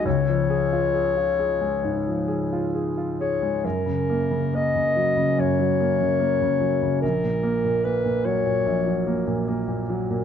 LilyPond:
<<
  \new Staff \with { instrumentName = "Clarinet" } { \time 4/4 \key fis \major \tempo 4 = 72 cis''2. r8 cis''8 | ais'4 dis''4 cis''2 | ais'4 b'8 cis''4. r4 | }
  \new Staff \with { instrumentName = "Grand piano" } { \clef bass \time 4/4 \key fis \major cis,16 eis16 gis'16 eis'16 gis'16 eis'16 gis'16 gis16 gis,16 eis16 gis'16 eis'16 gis'16 eis'16 gis'16 gis16 | fis,16 cis16 ais16 cis16 ais16 cis16 fis16 cis16 fis,16 fis16 ais16 cis16 ais16 cis16 fis16 cis16 | ais,,16 ais,16 ais16 ais,16 ais16 ais,16 fis16 ais,16 ais,,16 fis16 ais16 ais,16 ais16 ais,16 fis16 ais,16 | }
>>